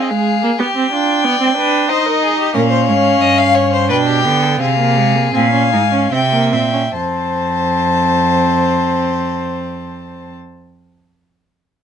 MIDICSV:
0, 0, Header, 1, 5, 480
1, 0, Start_track
1, 0, Tempo, 652174
1, 439, Time_signature, 3, 2, 24, 8
1, 2364, Tempo, 695249
1, 3324, Tempo, 738916
1, 3804, Tempo, 800000
1, 4764, Tempo, 846262
1, 7537, End_track
2, 0, Start_track
2, 0, Title_t, "Violin"
2, 0, Program_c, 0, 40
2, 16, Note_on_c, 0, 75, 73
2, 65, Note_on_c, 0, 77, 92
2, 76, Note_off_c, 0, 75, 0
2, 439, Note_off_c, 0, 77, 0
2, 445, Note_on_c, 0, 79, 106
2, 1394, Note_on_c, 0, 75, 99
2, 1405, Note_off_c, 0, 79, 0
2, 1873, Note_off_c, 0, 75, 0
2, 1877, Note_on_c, 0, 77, 112
2, 2820, Note_off_c, 0, 77, 0
2, 2837, Note_on_c, 0, 79, 106
2, 3315, Note_off_c, 0, 79, 0
2, 3327, Note_on_c, 0, 77, 107
2, 3797, Note_off_c, 0, 77, 0
2, 3803, Note_on_c, 0, 80, 96
2, 4260, Note_off_c, 0, 80, 0
2, 4272, Note_on_c, 0, 79, 101
2, 4510, Note_off_c, 0, 79, 0
2, 4514, Note_on_c, 0, 79, 88
2, 4760, Note_off_c, 0, 79, 0
2, 4764, Note_on_c, 0, 81, 95
2, 6699, Note_off_c, 0, 81, 0
2, 7537, End_track
3, 0, Start_track
3, 0, Title_t, "Violin"
3, 0, Program_c, 1, 40
3, 0, Note_on_c, 1, 68, 84
3, 433, Note_on_c, 1, 67, 77
3, 444, Note_off_c, 1, 68, 0
3, 681, Note_on_c, 1, 65, 81
3, 692, Note_off_c, 1, 67, 0
3, 907, Note_off_c, 1, 65, 0
3, 912, Note_on_c, 1, 74, 75
3, 1147, Note_off_c, 1, 74, 0
3, 1153, Note_on_c, 1, 71, 92
3, 1388, Note_off_c, 1, 71, 0
3, 1392, Note_on_c, 1, 72, 92
3, 1512, Note_on_c, 1, 70, 81
3, 1523, Note_off_c, 1, 72, 0
3, 1630, Note_off_c, 1, 70, 0
3, 1634, Note_on_c, 1, 68, 77
3, 1749, Note_off_c, 1, 68, 0
3, 1754, Note_on_c, 1, 67, 89
3, 1862, Note_off_c, 1, 67, 0
3, 1866, Note_on_c, 1, 70, 101
3, 1916, Note_off_c, 1, 70, 0
3, 1987, Note_on_c, 1, 72, 94
3, 2103, Note_off_c, 1, 72, 0
3, 2107, Note_on_c, 1, 73, 92
3, 2362, Note_on_c, 1, 75, 102
3, 2373, Note_off_c, 1, 73, 0
3, 2481, Note_on_c, 1, 77, 108
3, 2491, Note_off_c, 1, 75, 0
3, 2597, Note_on_c, 1, 73, 107
3, 2607, Note_off_c, 1, 77, 0
3, 2715, Note_off_c, 1, 73, 0
3, 2719, Note_on_c, 1, 72, 104
3, 2831, Note_off_c, 1, 72, 0
3, 2835, Note_on_c, 1, 71, 107
3, 2884, Note_off_c, 1, 71, 0
3, 2955, Note_on_c, 1, 67, 92
3, 3197, Note_on_c, 1, 69, 81
3, 3207, Note_off_c, 1, 67, 0
3, 3318, Note_off_c, 1, 69, 0
3, 3322, Note_on_c, 1, 68, 93
3, 3806, Note_on_c, 1, 77, 95
3, 3815, Note_off_c, 1, 68, 0
3, 4272, Note_on_c, 1, 76, 84
3, 4281, Note_off_c, 1, 77, 0
3, 4762, Note_off_c, 1, 76, 0
3, 4766, Note_on_c, 1, 72, 87
3, 6700, Note_off_c, 1, 72, 0
3, 7537, End_track
4, 0, Start_track
4, 0, Title_t, "Viola"
4, 0, Program_c, 2, 41
4, 0, Note_on_c, 2, 60, 85
4, 78, Note_on_c, 2, 56, 95
4, 89, Note_off_c, 2, 60, 0
4, 313, Note_off_c, 2, 56, 0
4, 318, Note_on_c, 2, 58, 100
4, 366, Note_off_c, 2, 58, 0
4, 437, Note_on_c, 2, 59, 90
4, 485, Note_off_c, 2, 59, 0
4, 559, Note_on_c, 2, 60, 95
4, 670, Note_off_c, 2, 60, 0
4, 675, Note_on_c, 2, 62, 94
4, 914, Note_on_c, 2, 59, 108
4, 925, Note_off_c, 2, 62, 0
4, 1033, Note_off_c, 2, 59, 0
4, 1037, Note_on_c, 2, 60, 92
4, 1149, Note_off_c, 2, 60, 0
4, 1153, Note_on_c, 2, 62, 103
4, 1389, Note_on_c, 2, 63, 106
4, 1400, Note_off_c, 2, 62, 0
4, 1873, Note_on_c, 2, 61, 88
4, 1884, Note_off_c, 2, 63, 0
4, 2833, Note_on_c, 2, 62, 87
4, 2843, Note_off_c, 2, 61, 0
4, 3070, Note_off_c, 2, 62, 0
4, 3075, Note_on_c, 2, 59, 85
4, 3322, Note_on_c, 2, 60, 87
4, 3332, Note_off_c, 2, 59, 0
4, 3438, Note_off_c, 2, 60, 0
4, 3442, Note_on_c, 2, 58, 81
4, 3563, Note_on_c, 2, 56, 83
4, 3573, Note_off_c, 2, 58, 0
4, 3682, Note_on_c, 2, 58, 79
4, 3691, Note_off_c, 2, 56, 0
4, 3795, Note_off_c, 2, 58, 0
4, 3799, Note_on_c, 2, 60, 85
4, 3910, Note_off_c, 2, 60, 0
4, 3914, Note_on_c, 2, 61, 76
4, 4030, Note_off_c, 2, 61, 0
4, 4033, Note_on_c, 2, 63, 84
4, 4080, Note_off_c, 2, 63, 0
4, 4150, Note_on_c, 2, 61, 78
4, 4268, Note_off_c, 2, 61, 0
4, 4270, Note_on_c, 2, 60, 89
4, 4318, Note_off_c, 2, 60, 0
4, 4392, Note_on_c, 2, 58, 81
4, 4515, Note_on_c, 2, 60, 78
4, 4524, Note_off_c, 2, 58, 0
4, 4633, Note_off_c, 2, 60, 0
4, 4637, Note_on_c, 2, 61, 70
4, 4685, Note_off_c, 2, 61, 0
4, 4763, Note_on_c, 2, 60, 71
4, 6697, Note_off_c, 2, 60, 0
4, 7537, End_track
5, 0, Start_track
5, 0, Title_t, "Cello"
5, 0, Program_c, 3, 42
5, 1877, Note_on_c, 3, 46, 89
5, 2122, Note_on_c, 3, 44, 80
5, 2133, Note_off_c, 3, 46, 0
5, 2362, Note_off_c, 3, 44, 0
5, 2366, Note_on_c, 3, 43, 80
5, 2839, Note_on_c, 3, 47, 91
5, 2850, Note_off_c, 3, 43, 0
5, 3082, Note_on_c, 3, 50, 85
5, 3092, Note_off_c, 3, 47, 0
5, 3323, Note_off_c, 3, 50, 0
5, 3327, Note_on_c, 3, 48, 96
5, 3797, Note_off_c, 3, 48, 0
5, 3810, Note_on_c, 3, 46, 92
5, 4038, Note_on_c, 3, 44, 81
5, 4047, Note_off_c, 3, 46, 0
5, 4268, Note_off_c, 3, 44, 0
5, 4272, Note_on_c, 3, 48, 89
5, 4518, Note_on_c, 3, 46, 76
5, 4527, Note_off_c, 3, 48, 0
5, 4764, Note_off_c, 3, 46, 0
5, 4767, Note_on_c, 3, 41, 78
5, 6702, Note_off_c, 3, 41, 0
5, 7537, End_track
0, 0, End_of_file